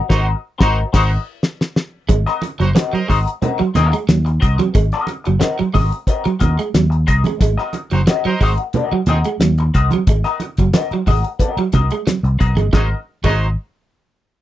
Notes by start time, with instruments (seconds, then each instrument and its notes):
0.09 fingered electric bass G#1, clean electric guitar C4 F#4 A#4 D#5, horn section D#4 F#4 C5, kick, snare
0.58 fingered electric bass G#1, clean electric guitar C4 F#4 A#4 D#5, horn section D#4 F#4 C5, kick, snare
0.93 fingered electric bass G#1, clean electric guitar C4 F#4 A#4 D#5, horn section D#4 F#4 C5, kick, snare, crash
1.43 snare
1.61 snare
1.76 snare
2.09 fingered electric bass G#1, clean electric guitar G#3, muted clean electric guitar stroke, kick, closed hi-hat, muted conga
2.26 clean electric guitar C4 F#4 A#4 D#5, snare, closed hi-hat
2.42 muted clean electric guitar stroke, closed hi-hat, muted conga
2.59 fingered electric bass F#1, clean electric guitar F#3, horn section D#4 F#4 C5, muted clean electric guitar stroke, closed hi-hat
2.75 clean electric guitar C4 F#4 A#4 D#5, muted clean electric guitar stroke, snare, closed hi-hat, high conga
2.93 clean electric guitar F#3, horn section A#4 C5 D#5, muted fingered electric bass stroke, muted clean electric guitar stroke, closed hi-hat
3.08 fingered electric bass G#1, clean electric guitar G#3 C4 F#4 A#4 D#5, horn section D#4 F#4 C5, kick, open hi-hat
3.27 muted clean electric guitar stroke, closed hi-hat
3.42 clean electric guitar C4 F#4 A#4 D#5, closed hi-hat, muted conga, low conga
3.59 clean electric guitar F#3, muted clean electric guitar stroke, muted fingered electric bass stroke, closed hi-hat
3.74 fingered electric bass D#2, clean electric guitar C4 F#4 A#4 D#5, horn section C4 D#4 G#4, muted clean electric guitar stroke, snare, closed hi-hat, muted conga, low conga
3.92 clean electric guitar G#3, muted clean electric guitar stroke, closed hi-hat
4.09 fingered electric bass D#2, clean electric guitar F#3, snare, closed hi-hat, high conga
4.25 muted clean electric guitar stroke, closed hi-hat
4.40 fingered electric bass C2, clean electric guitar C4 F#4 A#4 D#5, kick, closed hi-hat
4.58 clean electric guitar F#3, muted clean electric guitar stroke, closed hi-hat, high conga
4.73 fingered electric bass G#1, clean electric guitar G#3, muted clean electric guitar stroke, kick, closed hi-hat, muted conga
4.92 clean electric guitar C4 F#4 A#4 D#5, snare, closed hi-hat
5.07 muted clean electric guitar stroke, closed hi-hat, muted conga
5.24 fingered electric bass F#1, clean electric guitar F#3, muted clean electric guitar stroke, closed hi-hat
5.39 clean electric guitar C4 F#4 A#4 D#5, muted clean electric guitar stroke, snare, closed hi-hat, high conga
5.58 clean electric guitar F#3, muted clean electric guitar stroke, muted fingered electric bass stroke, closed hi-hat
5.73 fingered electric bass G#1, clean electric guitar G#3 C4 F#4 A#4 D#5, kick, open hi-hat, low conga
5.90 muted clean electric guitar stroke, closed hi-hat
6.07 clean electric guitar C4 F#4 A#4 D#5, kick, closed hi-hat
6.25 clean electric guitar F#3, muted clean electric guitar stroke, muted fingered electric bass stroke, closed hi-hat
6.39 fingered electric bass D#2, clean electric guitar C4 F#4 A#4 D#5, muted clean electric guitar stroke, kick, snare, closed hi-hat, muted conga, low conga
6.57 clean electric guitar G#3, muted clean electric guitar stroke, closed hi-hat
6.74 fingered electric bass D#2, clean electric guitar F#3, snare, closed hi-hat, high conga
6.90 muted clean electric guitar stroke, closed hi-hat
7.07 fingered electric bass C2, clean electric guitar C4 F#4 A#4 D#5, muted clean electric guitar stroke, kick, closed hi-hat
7.24 clean electric guitar G#3, muted clean electric guitar stroke, closed hi-hat, high conga
7.39 fingered electric bass G#1, clean electric guitar G#3, muted clean electric guitar stroke, kick, closed hi-hat, muted conga
7.58 clean electric guitar C4 F#4 A#4 D#5, snare
7.73 muted clean electric guitar stroke, closed hi-hat, muted conga
7.91 fingered electric bass F#1, clean electric guitar F#3, horn section D#4 F#4 C5, muted clean electric guitar stroke, closed hi-hat
8.07 clean electric guitar C4 F#4 A#4 D#5, muted clean electric guitar stroke, snare, closed hi-hat, high conga
8.25 clean electric guitar F#3, horn section A#4 C5 D#5, muted fingered electric bass stroke, muted clean electric guitar stroke, closed hi-hat
8.41 fingered electric bass G#1, clean electric guitar G#3 C4 F#4 A#4 D#5, horn section D#4 F#4 C5, kick, open hi-hat
8.58 muted clean electric guitar stroke, closed hi-hat
8.73 clean electric guitar C4 F#4 A#4 D#5, closed hi-hat, muted conga, low conga
8.92 clean electric guitar F#3, muted fingered electric bass stroke, muted clean electric guitar stroke
9.06 fingered electric bass D#2, clean electric guitar C4 F#4 A#4 D#5, horn section C4 D#4 G#4, muted clean electric guitar stroke, snare, closed hi-hat, muted conga, low conga
9.24 clean electric guitar G#3, muted clean electric guitar stroke, closed hi-hat
9.40 fingered electric bass D#2, clean electric guitar F#3, snare, closed hi-hat, high conga
9.58 muted clean electric guitar stroke, closed hi-hat
9.74 fingered electric bass C2, clean electric guitar C4 F#4 A#4 D#5, kick, closed hi-hat
9.91 clean electric guitar F#3, muted clean electric guitar stroke, closed hi-hat, high conga
10.07 fingered electric bass G#1, clean electric guitar G#3, muted clean electric guitar stroke, kick, closed hi-hat, muted conga
10.24 clean electric guitar C4 F#4 A#4 D#5, snare, closed hi-hat
10.40 muted clean electric guitar stroke, closed hi-hat, muted conga
10.57 fingered electric bass F#1, clean electric guitar F#3, muted clean electric guitar stroke, kick, closed hi-hat
10.73 clean electric guitar C4 F#4 A#4 D#5, muted clean electric guitar stroke, snare, closed hi-hat, high conga
10.91 clean electric guitar F#3, muted fingered electric bass stroke, muted clean electric guitar stroke, closed hi-hat
11.06 fingered electric bass G#1, clean electric guitar G#3 C4 F#4 A#4 D#5, kick, open hi-hat, low conga
11.24 muted clean electric guitar stroke, closed hi-hat
11.39 clean electric guitar C4 F#4 A#4 D#5, kick, closed hi-hat, muted conga
11.57 clean electric guitar F#3, muted fingered electric bass stroke, muted clean electric guitar stroke, closed hi-hat
11.72 fingered electric bass C2, clean electric guitar C4 F#4 A#4 D#5, muted clean electric guitar stroke, kick, snare, closed hi-hat, muted conga, low conga
11.91 clean electric guitar G#3, muted clean electric guitar stroke, closed hi-hat
12.07 clean electric guitar F#3, snare, closed hi-hat, high conga
12.23 fingered electric bass C2, muted clean electric guitar stroke, closed hi-hat
12.39 fingered electric bass B1, clean electric guitar C4 F#4 A#4 D#5, muted clean electric guitar stroke, kick, closed hi-hat
12.55 fingered electric bass G1, clean electric guitar G#3, muted clean electric guitar stroke, closed hi-hat, high conga
12.73 fingered electric bass G#1, horn section F#3 D#4 C5, clean electric guitar G#3 C4 F#4 A#4 D#5, kick, snare, muted conga
13.24 fingered electric bass G#1, horn section F#3 D#4 C5, clean electric guitar G#3 C4 F#4 A#4 D#5, kick, crash, muted conga